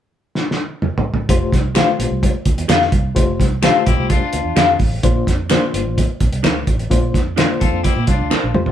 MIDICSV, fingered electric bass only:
0, 0, Header, 1, 3, 480
1, 0, Start_track
1, 0, Key_signature, -1, "major"
1, 0, Tempo, 468384
1, 1321, Time_signature, 4, 2, 24, 8
1, 8934, End_track
2, 0, Start_track
2, 0, Title_t, "Fingered electric bass"
2, 0, Program_c, 0, 33
2, 1319, Note_on_c, 0, 29, 82
2, 1517, Note_off_c, 0, 29, 0
2, 1563, Note_on_c, 0, 36, 78
2, 1859, Note_off_c, 0, 36, 0
2, 2042, Note_on_c, 0, 34, 89
2, 2140, Note_off_c, 0, 34, 0
2, 2159, Note_on_c, 0, 36, 84
2, 2357, Note_off_c, 0, 36, 0
2, 2519, Note_on_c, 0, 38, 76
2, 2618, Note_off_c, 0, 38, 0
2, 2638, Note_on_c, 0, 40, 79
2, 2737, Note_off_c, 0, 40, 0
2, 2758, Note_on_c, 0, 41, 89
2, 2956, Note_off_c, 0, 41, 0
2, 2995, Note_on_c, 0, 36, 86
2, 3194, Note_off_c, 0, 36, 0
2, 3241, Note_on_c, 0, 29, 87
2, 3438, Note_off_c, 0, 29, 0
2, 3481, Note_on_c, 0, 36, 88
2, 3777, Note_off_c, 0, 36, 0
2, 3964, Note_on_c, 0, 34, 86
2, 4060, Note_off_c, 0, 34, 0
2, 4083, Note_on_c, 0, 36, 75
2, 4279, Note_off_c, 0, 36, 0
2, 4443, Note_on_c, 0, 38, 80
2, 4540, Note_off_c, 0, 38, 0
2, 4560, Note_on_c, 0, 40, 82
2, 4658, Note_off_c, 0, 40, 0
2, 4679, Note_on_c, 0, 41, 81
2, 4877, Note_off_c, 0, 41, 0
2, 4916, Note_on_c, 0, 33, 83
2, 5115, Note_off_c, 0, 33, 0
2, 5161, Note_on_c, 0, 34, 90
2, 5358, Note_off_c, 0, 34, 0
2, 5400, Note_on_c, 0, 41, 86
2, 5697, Note_off_c, 0, 41, 0
2, 5880, Note_on_c, 0, 31, 87
2, 5979, Note_off_c, 0, 31, 0
2, 6003, Note_on_c, 0, 33, 80
2, 6200, Note_off_c, 0, 33, 0
2, 6361, Note_on_c, 0, 34, 86
2, 6460, Note_off_c, 0, 34, 0
2, 6478, Note_on_c, 0, 36, 79
2, 6578, Note_off_c, 0, 36, 0
2, 6598, Note_on_c, 0, 38, 86
2, 6797, Note_off_c, 0, 38, 0
2, 6838, Note_on_c, 0, 33, 81
2, 7037, Note_off_c, 0, 33, 0
2, 7082, Note_on_c, 0, 34, 95
2, 7280, Note_off_c, 0, 34, 0
2, 7322, Note_on_c, 0, 41, 84
2, 7619, Note_off_c, 0, 41, 0
2, 7803, Note_on_c, 0, 40, 92
2, 7901, Note_off_c, 0, 40, 0
2, 7919, Note_on_c, 0, 41, 80
2, 8019, Note_off_c, 0, 41, 0
2, 8164, Note_on_c, 0, 46, 84
2, 8262, Note_off_c, 0, 46, 0
2, 8278, Note_on_c, 0, 36, 83
2, 8379, Note_off_c, 0, 36, 0
2, 8406, Note_on_c, 0, 38, 80
2, 8503, Note_off_c, 0, 38, 0
2, 8647, Note_on_c, 0, 34, 77
2, 8744, Note_off_c, 0, 34, 0
2, 8760, Note_on_c, 0, 41, 86
2, 8934, Note_off_c, 0, 41, 0
2, 8934, End_track
3, 0, Start_track
3, 0, Title_t, "Muted fingered electric bass strokes"
3, 8527, Note_on_c, 9, 29, 43
3, 8630, Note_off_c, 9, 29, 0
3, 8934, End_track
0, 0, End_of_file